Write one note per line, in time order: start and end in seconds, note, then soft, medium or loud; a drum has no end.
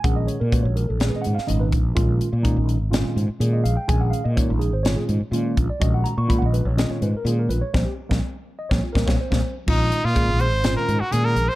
0.04 0.27 A#1 medium
0.04 0.36 A#2 medium
0.04 0.36 D#3 medium
0.04 0.36 G#3 medium
0.04 0.36 C#4 medium
0.04 0.36 G#4 medium
0.04 0.16 F#5 medium
0.04 kick loud
0.04 closed hi-hat medium
0.16 0.27 D#5 medium
0.27 0.39 C#5 medium
0.27 closed hi-hat medium
0.40 0.67 A#2 medium
0.40 0.51 A#4 medium
0.51 0.84 A#2 medium
0.51 0.83 D#3 medium
0.51 0.84 G#3 medium
0.51 0.84 C#4 medium
0.51 0.84 F#4 medium
0.51 0.64 B4 medium
0.51 kick medium
0.51 closed hi-hat medium
0.63 0.87 A#1 medium
0.63 0.75 C#5 medium
0.76 0.88 A#4 medium
0.76 closed hi-hat medium
0.89 1.11 A#1 medium
0.89 1.00 A4 medium
0.99 1.31 A#2 medium
0.99 1.32 D#3 medium
0.99 1.32 G#3 medium
0.99 1.32 C#4 medium
0.99 1.32 G#4 medium
0.99 snare loud
0.99 closed hi-hat medium
1.09 1.16 B4 medium
1.15 1.24 D#5 medium
1.15 muted fretless electric bass stroke soft
1.22 1.35 F#5 medium
1.22 closed hi-hat medium
1.26 1.37 G#2 medium
1.35 1.47 F5 medium
1.35 muted fretless electric bass stroke soft
1.35 snare soft
1.46 1.70 G#1 medium
1.46 1.79 A#2 medium
1.46 1.80 D#3 medium
1.46 1.80 G#3 medium
1.46 1.80 C#4 medium
1.46 1.80 D#4 medium
1.46 1.60 D#5 medium
1.46 closed hi-hat medium
1.60 1.67 B4 medium
1.72 1.94 A#1 medium
1.72 kick medium
1.72 closed hi-hat medium
1.95 2.19 A#1 medium
1.95 2.27 A#2 loud
1.95 2.28 D#3 medium
1.95 2.27 G#3 medium
1.95 2.28 C#4 medium
1.95 2.28 F4 loud
1.95 kick loud
1.95 closed hi-hat medium
2.21 closed hi-hat medium
2.33 2.58 A#2 medium
2.43 2.76 A#2 medium
2.43 2.76 D#3 medium
2.43 2.76 G#3 medium
2.43 2.76 C#4 medium
2.43 2.76 D#4 loud
2.43 kick medium
2.43 closed hi-hat medium
2.57 2.80 A#1 medium
2.69 closed hi-hat medium
2.80 3.03 G#1 medium
2.90 3.24 A#2 loud
2.90 3.24 D#3 medium
2.90 3.24 G#3 medium
2.90 3.24 C#4 medium
2.90 3.24 F4 loud
2.90 snare loud
2.90 closed hi-hat medium
3.05 muted fretless electric bass stroke soft
3.16 3.28 G#2 medium
3.16 closed hi-hat medium
3.28 muted fretless electric bass stroke soft
3.39 3.72 A#2 medium
3.39 3.63 A#2 medium
3.39 3.72 D#3 medium
3.39 3.72 G#3 medium
3.39 3.72 C#4 medium
3.39 3.73 G#4 medium
3.39 closed hi-hat medium
3.53 3.64 D#5 medium
3.64 3.76 A#1 medium
3.64 3.76 F5 medium
3.64 closed hi-hat medium
3.77 3.88 G5 medium
3.87 4.11 A#1 medium
3.87 4.20 A#2 medium
3.87 4.21 D#3 medium
3.87 4.21 G#3 medium
3.87 4.21 C#4 medium
3.87 4.21 G#4 medium
3.87 4.00 G#5 medium
3.87 kick loud
3.87 closed hi-hat medium
4.01 4.12 F#5 medium
4.10 4.23 F5 medium
4.10 closed hi-hat medium
4.24 4.52 A#2 medium
4.24 4.36 D#5 medium
4.36 4.69 A#2 medium
4.36 4.69 D#3 medium
4.36 4.69 G#3 medium
4.36 4.69 C#4 medium
4.36 4.69 D#4 medium
4.36 4.49 C#5 medium
4.36 kick medium
4.36 closed hi-hat medium
4.50 4.74 A#1 medium
4.50 4.61 F4 medium
4.59 4.72 G#4 medium
4.59 closed hi-hat medium
4.73 4.96 G#1 medium
4.73 4.85 C5 medium
4.83 5.17 A#2 medium
4.83 5.17 D#3 medium
4.83 5.17 G#3 medium
4.83 5.17 C#4 medium
4.83 5.17 F4 medium
4.83 4.96 C#5 medium
4.83 snare loud
4.83 closed hi-hat medium
4.96 5.03 G#4 medium
4.96 muted fretless electric bass stroke soft
5.09 5.20 G#2 medium
5.09 closed hi-hat medium
5.21 muted fretless electric bass stroke soft
5.32 5.55 A#2 medium
5.32 5.65 A#2 medium
5.32 5.65 D#3 medium
5.32 5.65 G#3 medium
5.32 5.65 C#4 medium
5.32 5.65 F4 loud
5.32 closed hi-hat medium
5.57 5.69 A#1 medium
5.57 kick medium
5.57 closed hi-hat medium
5.70 5.81 D5 medium
5.79 6.04 A#1 medium
5.79 6.13 A#2 medium
5.79 6.13 D#3 medium
5.79 6.13 G#3 medium
5.79 6.13 C#4 medium
5.79 6.13 F#4 medium
5.79 5.93 D#5 medium
5.79 kick loud
5.79 closed hi-hat medium
5.94 6.05 F#5 medium
6.04 6.17 A#5 loud
6.04 closed hi-hat medium
6.18 6.43 A#2 loud
6.18 6.29 C#6 medium
6.28 6.61 A#2 medium
6.28 6.61 D#3 medium
6.28 6.61 G#3 medium
6.28 6.61 C#4 medium
6.28 6.61 F4 medium
6.28 6.37 B5 medium
6.28 kick medium
6.28 closed hi-hat medium
6.39 6.64 A#1 medium
6.39 6.46 F#5 loud
6.46 6.54 D#5 medium
6.53 6.65 B4 medium
6.53 closed hi-hat medium
6.65 6.88 A#1 medium
6.65 6.78 C#5 medium
6.76 7.09 A#2 medium
6.76 7.09 D#3 medium
6.76 7.10 G#3 medium
6.76 7.10 C#4 medium
6.76 7.10 F4 medium
6.76 6.90 D#5 medium
6.76 snare loud
6.76 closed hi-hat medium
6.91 7.02 C#5 medium
7.02 7.13 G#2 medium
7.02 7.14 B4 medium
7.02 closed hi-hat medium
7.14 7.27 A#4 medium
7.14 muted fretless electric bass stroke soft
7.25 7.48 A#2 loud
7.25 7.58 A#2 medium
7.25 7.58 D#3 medium
7.25 7.58 G#3 medium
7.25 7.59 C#4 medium
7.25 7.59 F4 medium
7.25 7.39 G#4 medium
7.25 closed hi-hat medium
7.39 7.50 A#4 medium
7.49 7.61 A#1 medium
7.49 7.62 B4 medium
7.49 closed hi-hat medium
7.62 7.73 C#5 medium
7.74 7.84 A#1 medium
7.74 7.82 F3 loud
7.74 7.82 G3 loud
7.74 7.82 A#3 loud
7.74 7.86 C5 medium
7.74 kick medium
7.74 snare medium
7.85 7.93 G4 medium
8.09 8.20 A#1 medium
8.09 8.17 F3 medium
8.09 8.18 G3 loud
8.09 8.17 A#3 loud
8.09 kick medium
8.09 snare medium
8.59 8.70 D#5 medium
8.69 8.80 A#1 medium
8.69 8.79 F3 loud
8.69 8.79 G3 loud
8.69 8.79 A#3 loud
8.69 8.82 C#5 medium
8.69 kick medium
8.69 snare medium
8.83 8.95 F4 medium
8.93 9.04 A#1 medium
8.93 9.03 F3 loud
8.93 9.03 G3 medium
8.93 9.03 A#3 medium
8.93 9.06 A#4 medium
8.93 kick medium
8.93 snare medium
9.06 9.17 A#1 loud
9.06 9.15 F3 loud
9.06 9.15 G3 medium
9.06 9.14 A#3 loud
9.06 9.18 C#5 loud
9.06 kick loud
9.06 snare loud
9.21 9.54 C5 medium
9.31 9.41 A#1 loud
9.31 9.39 F3 medium
9.31 9.39 G3 loud
9.31 9.39 A#3 loud
9.31 kick medium
9.31 snare medium
9.66 9.90 A#1 medium
9.66 9.99 A#2 medium
9.66 10.00 D#3 medium
9.66 10.00 G#3 medium
9.66 10.00 C#4 medium
9.66 10.07 D#4 medium
9.66 10.00 F4 medium
9.66 kick loud
9.66 crash medium
9.92 closed hi-hat medium
10.05 10.30 A#2 medium
10.05 10.42 F4 medium
10.14 10.47 A#2 medium
10.14 10.48 D#3 medium
10.14 10.48 G#3 medium
10.14 10.48 C#4 medium
10.14 10.48 G#4 medium
10.14 kick medium
10.14 closed hi-hat medium
10.29 10.53 A#1 medium
10.40 10.76 C5 medium
10.40 closed hi-hat medium
10.53 10.75 G#1 medium
10.63 10.96 A#2 medium
10.63 10.96 D#3 medium
10.63 10.96 G#3 medium
10.63 10.97 C#4 medium
10.63 10.97 F4 medium
10.63 snare loud
10.63 closed hi-hat medium
10.76 11.02 A#4 medium
10.76 muted fretless electric bass stroke soft
10.88 11.00 G#2 medium
10.88 closed hi-hat medium
11.00 11.14 F#4 medium
11.00 muted fretless electric bass stroke soft
11.11 11.44 A#2 medium
11.11 11.35 A#2 medium
11.11 11.44 D#3 medium
11.11 11.44 G#3 medium
11.11 11.44 C#4 medium
11.11 11.44 G#4 medium
11.11 11.26 G#4 medium
11.11 closed hi-hat medium
11.25 11.50 A#4 medium
11.36 11.48 A#1 medium
11.36 closed hi-hat medium
11.49 11.55 C5 medium